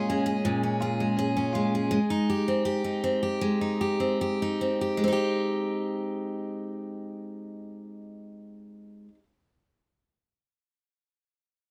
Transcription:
0.00 0.44 A#2 medium
0.00 0.10 G#3 medium
0.00 0.44 G#3 medium
0.00 0.62 C#4 soft
0.00 0.79 F4 medium
0.00 0.26 G#4 medium
0.09 1.00 G#3 medium
0.09 1.16 C#4 soft
0.26 0.81 G#4 medium
0.45 1.98 A#2 medium
0.45 2.48 G#3 medium
0.63 1.35 C#4 soft
0.81 1.52 F4 medium
0.81 1.18 G#4 medium
1.00 1.55 G#3 soft
1.17 1.98 C#4 medium
1.17 1.74 G#4 medium
1.37 1.98 C#4 soft
1.53 1.91 G#3 medium
1.53 1.97 F4 medium
1.75 2.29 G#4 soft
1.91 3.41 G#3 medium
2.10 2.84 D#4 medium
2.30 2.65 G4 medium
2.48 3.03 C4 soft
2.65 3.22 G4 medium
2.84 3.61 D#4 soft
3.04 4.00 C4 soft
3.23 3.80 G4 medium
3.41 4.97 G#3 medium
3.61 4.42 D#4 soft
3.81 4.21 G4 medium
4.00 4.61 C4 soft
4.21 4.81 G4 medium
4.42 5.07 D#4 soft
4.61 5.03 C4 soft
4.81 5.12 G4 medium
4.97 9.08 G#3 medium
5.04 9.14 C4 medium
5.08 9.18 D#4 medium
5.12 9.23 G4 medium

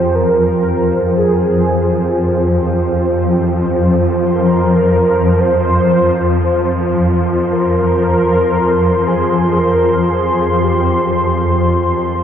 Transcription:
0.00 12.23 F2 medium
0.00 12.23 F3 medium
0.00 12.23 F4 medium
0.00 0.16 C5 loud
0.00 12.23 C5 medium
0.00 4.12 G5 medium
0.15 1.19 A#4 loud
1.17 2.76 G#4 medium
4.05 12.23 C6 medium
4.33 5.41 A#4 medium
5.39 6.97 C5 loud
7.50 9.09 A#4 loud
9.07 9.59 G#4 medium
9.57 10.11 A#4 medium
10.10 10.64 G#4 medium
10.63 11.40 G4 medium

